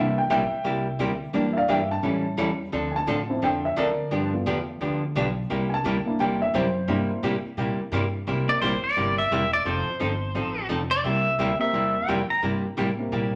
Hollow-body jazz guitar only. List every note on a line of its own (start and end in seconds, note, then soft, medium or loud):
0.00 0.17 C3 medium
0.00 0.17 G3 medium
0.00 0.17 A#3 medium
0.00 0.17 E4 medium
0.00 0.17 G4 medium
0.30 0.41 C3 medium
0.30 0.41 G3 medium
0.30 0.41 A#3 medium
0.30 0.42 E4 medium
0.30 0.42 G4 medium
0.64 0.86 C3 soft
0.64 0.86 G3 medium
0.64 0.86 A#3 medium
0.64 0.86 E4 medium
0.64 0.86 G4 medium
0.99 1.11 C3 medium
0.99 1.11 G3 medium
0.99 1.11 A#3 medium
0.99 1.11 E4 medium
0.99 1.11 G4 medium
1.33 1.55 E3 medium
1.33 1.55 A#3 medium
1.33 1.56 D4 medium
1.33 1.56 G4 medium
1.68 1.80 E3 medium
1.68 1.80 A#3 medium
1.68 1.80 D4 medium
1.68 1.80 G4 medium
2.03 2.25 E3 medium
2.03 2.25 G3 medium
2.03 2.25 C#4 medium
2.03 2.25 E4 medium
2.03 2.25 A4 medium
2.37 2.49 E3 medium
2.37 2.49 G3 medium
2.37 2.49 C#4 medium
2.37 2.50 E4 medium
2.37 2.50 A4 medium
2.72 2.94 D3 medium
2.72 2.94 F3 medium
2.72 2.94 C4 medium
2.72 2.94 D4 medium
2.72 2.94 A4 medium
3.07 3.19 D3 medium
3.07 3.19 F3 medium
3.07 3.19 C4 medium
3.07 3.19 D4 medium
3.07 3.19 A4 medium
3.42 3.63 D3 medium
3.42 3.64 F3 medium
3.42 3.64 C4 medium
3.42 3.64 D4 medium
3.42 3.64 A4 medium
3.76 3.88 D3 medium
3.76 3.88 F3 medium
3.76 3.88 C4 medium
3.76 3.88 D4 medium
3.76 3.89 A4 loud
4.11 4.33 D3 medium
4.11 4.33 F3 medium
4.11 4.33 B3 medium
4.11 4.33 D4 medium
4.11 4.33 G4 medium
4.46 4.58 D3 medium
4.46 4.58 F3 medium
4.46 4.58 B3 medium
4.46 4.58 D4 medium
4.46 4.58 G4 medium
4.81 5.02 D3 soft
4.81 5.03 F3 medium
4.81 5.03 B3 medium
4.81 5.03 D4 medium
4.81 5.03 G4 medium
5.16 5.27 D3 medium
5.16 5.27 F3 medium
5.16 5.27 B3 medium
5.16 5.27 D4 medium
5.16 5.27 G4 medium
5.50 5.71 C3 medium
5.50 5.72 G3 medium
5.50 5.72 A#3 medium
5.50 5.72 E4 medium
5.50 5.72 G4 medium
5.85 5.96 C3 medium
5.85 5.96 G3 medium
5.85 5.97 A#3 medium
5.85 5.97 E4 medium
5.85 5.97 G4 medium
6.20 6.41 C3 medium
6.20 6.41 G3 medium
6.20 6.41 A#3 medium
6.20 6.41 E4 medium
6.20 6.41 G4 medium
6.54 6.65 C3 medium
6.54 6.66 G3 medium
6.54 6.66 A#3 medium
6.54 6.66 E4 medium
6.54 6.66 G4 medium
6.88 7.10 C3 medium
6.88 7.10 G3 medium
6.88 7.10 A#3 medium
6.88 7.10 E4 medium
6.88 7.10 G4 medium
7.23 7.35 C3 medium
7.23 7.35 G3 medium
7.23 7.35 A#3 medium
7.23 7.35 E4 medium
7.23 7.35 G4 medium
7.57 7.79 C3 soft
7.57 7.79 G3 medium
7.57 7.79 A#3 medium
7.57 7.80 E4 medium
7.57 7.80 G4 medium
7.92 8.04 C3 medium
7.92 8.04 G3 medium
7.92 8.04 A#3 medium
7.92 8.04 E4 medium
7.92 8.04 G4 medium
8.27 8.49 C3 medium
8.27 8.49 G3 medium
8.27 8.49 A#3 medium
8.27 8.49 E4 medium
8.27 8.49 G4 medium
8.62 8.73 C3 medium
8.62 8.73 G3 medium
8.62 8.73 A#3 medium
8.62 8.73 E4 medium
8.62 8.73 G4 medium
8.97 9.18 C3 medium
8.97 9.18 G3 soft
8.97 9.18 A#3 medium
8.97 9.18 E4 medium
8.97 9.18 G4 medium
9.32 9.43 C3 medium
9.32 9.43 G3 medium
9.32 9.43 A#3 medium
9.32 9.43 E4 medium
9.32 9.43 G4 medium
9.65 9.87 F3 medium
9.65 9.87 C4 medium
9.65 9.87 D#4 medium
9.65 9.87 A4 medium
10.00 10.11 F3 medium
10.00 10.12 C4 medium
10.00 10.12 D#4 medium
10.00 10.12 A4 medium
10.35 10.56 F3 medium
10.35 10.57 C4 medium
10.35 10.57 D#4 medium
10.35 10.57 A4 medium
10.69 10.81 F3 medium
10.69 10.81 C4 medium
10.69 10.81 D#4 medium
10.69 10.81 A4 medium
11.05 11.26 C3 medium
11.05 11.26 G3 medium
11.05 11.26 A#3 medium
11.05 11.26 E4 medium
11.05 11.26 G4 medium
11.39 11.50 C3 medium
11.39 11.51 G3 medium
11.39 11.51 A#3 medium
11.39 11.51 E4 medium
11.39 11.51 G4 medium
11.73 11.95 C3 medium
11.73 11.95 G3 medium
11.73 11.95 A#3 medium
11.73 11.95 E4 medium
11.73 11.95 G4 medium
12.08 12.20 C3 medium
12.08 12.20 G3 medium
12.08 12.20 A#3 medium
12.08 12.20 E4 medium
12.08 12.20 G4 medium
12.42 12.64 C3 medium
12.42 12.64 G3 medium
12.42 12.64 A#3 medium
12.42 12.65 E4 medium
12.42 12.65 G4 medium
12.77 12.89 C3 medium
12.77 12.89 G3 medium
12.77 12.89 A#3 medium
12.77 12.89 E4 medium
12.77 12.89 G4 medium
13.12 13.34 C3 medium
13.12 13.34 G3 medium
13.12 13.34 A#3 medium
13.12 13.34 E4 medium
13.12 13.34 G4 medium